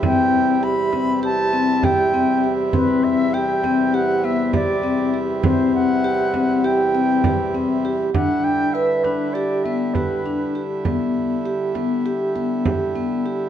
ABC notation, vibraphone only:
X:1
M:9/8
L:1/8
Q:3/8=67
K:Em
V:1 name="Vibraphone"
C2 G C G C G C G | C2 G C G B, G C G | C2 G C G C G C G | D2 B D G B, G D G |
B,2 G B, G B, G B, G |]